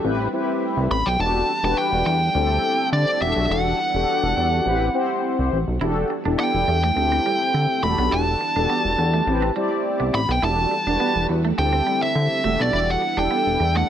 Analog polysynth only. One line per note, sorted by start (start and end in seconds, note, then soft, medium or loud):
0.03 0.27 C4 medium
0.03 0.27 E4 medium
0.03 0.27 G4 medium
0.03 0.28 B4 loud
0.33 0.96 C4 medium
0.33 0.96 E4 medium
0.33 0.96 G4 medium
0.33 0.96 B4 loud
1.19 1.51 D4 medium
1.19 1.51 F#4 medium
1.19 1.51 G4 medium
1.19 1.51 A4 medium
1.63 2.16 D4 medium
1.63 2.16 F#4 medium
1.63 2.16 G4 medium
1.63 2.16 B4 medium
2.35 3.19 C4 medium
2.35 3.19 E4 medium
2.35 3.19 G4 medium
2.35 3.19 A4 medium
3.21 3.79 D4 medium
3.21 3.79 F#4 medium
3.21 3.79 G4 medium
3.21 3.79 A4 medium
3.94 4.65 D4 medium
3.94 4.65 F#4 medium
3.94 4.64 G4 medium
3.94 4.66 A4 medium
4.65 4.89 C4 medium
4.65 4.89 E4 medium
4.65 4.89 G4 medium
4.65 4.89 B4 loud
4.94 5.57 C4 loud
4.94 5.58 E4 medium
4.94 5.58 G4 medium
4.94 5.58 C5 loud
5.80 6.12 D4 medium
5.80 6.12 F#4 medium
5.80 6.13 G4 medium
5.80 6.13 A4 loud
6.25 6.77 D4 medium
6.25 6.77 E4 medium
6.25 6.77 G4 medium
6.25 6.78 A4 medium
6.96 7.81 C4 medium
6.96 7.81 E4 medium
6.96 7.81 G4 medium
6.96 7.81 A4 medium
7.83 8.41 D4 medium
7.83 8.41 F#4 medium
7.83 8.41 G4 medium
7.83 8.41 A4 medium
8.56 9.27 D4 medium
8.56 9.27 F#4 medium
8.56 9.27 G4 medium
8.56 9.27 A4 medium
9.27 9.50 C4 loud
9.27 9.51 E4 medium
9.27 9.51 G4 medium
9.27 9.51 B4 loud
9.56 10.19 C4 medium
9.56 10.20 E4 medium
9.56 10.20 G4 medium
9.56 10.20 D5 loud
10.42 10.74 D4 medium
10.42 10.74 F#4 medium
10.42 10.74 G4 medium
10.42 10.74 A4 medium
10.86 11.39 D4 medium
10.86 11.39 F#4 medium
10.86 11.39 G4 medium
10.86 10.93 A#4 medium
10.94 11.42 B4 medium
11.57 12.42 C4 medium
11.57 12.42 E4 medium
11.57 12.42 G4 medium
11.57 12.42 A4 medium
12.43 13.01 D4 medium
12.43 13.01 F#4 medium
12.43 13.02 G4 medium
12.43 13.02 A4 loud
13.17 13.88 D4 medium
13.17 13.87 E4 medium
13.17 13.87 G4 medium
13.17 13.89 A4 loud